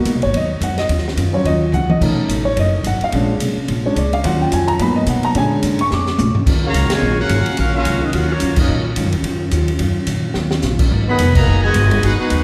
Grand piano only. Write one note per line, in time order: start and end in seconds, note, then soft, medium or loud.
0.00 0.11 A#3 medium
0.00 0.11 B3 soft
0.00 0.11 F#4 medium
0.23 0.33 C#5 medium
0.36 0.61 D#5 medium
0.64 0.78 F#5 medium
0.79 1.04 D#5 medium
1.33 1.97 F#3 medium
1.33 1.98 C#4 soft
1.33 1.98 F4 medium
1.33 1.45 C#5 medium
1.46 1.72 D#5 medium
1.74 1.90 F#5 medium
1.90 2.16 D#5 medium
2.01 2.43 A3 soft
2.01 2.44 C#4 soft
2.01 2.44 D#4 medium
2.45 2.56 C#5 medium
2.60 2.84 D#5 medium
2.87 3.02 F#5 medium
3.04 3.29 F5 medium
3.15 3.34 G#3 medium
3.15 3.34 C#4 soft
3.15 3.34 D4 medium
3.85 3.96 G#3 soft
3.85 3.96 C#4 soft
3.85 3.96 D4 medium
3.85 3.97 C#5 medium
3.98 4.13 D5 medium
4.14 4.24 F5 medium
4.24 4.77 F#3 soft
4.24 4.77 C#4 soft
4.24 4.78 F4 medium
4.24 4.41 F#5 medium
4.41 4.52 G5 medium
4.54 4.69 G#5 medium
4.68 4.79 A#5 medium
4.80 5.33 F#3 medium
4.80 5.33 A#3 soft
4.80 5.33 B3 medium
4.80 4.97 B5 medium
4.96 5.07 D#5 medium
5.09 5.24 F#5 medium
5.25 5.35 A#5 loud
5.35 5.77 D3 soft
5.35 5.78 G#3 medium
5.35 5.78 C#4 medium
5.35 5.78 G#5 medium
5.81 5.91 C#6 loud
5.93 6.39 D6 medium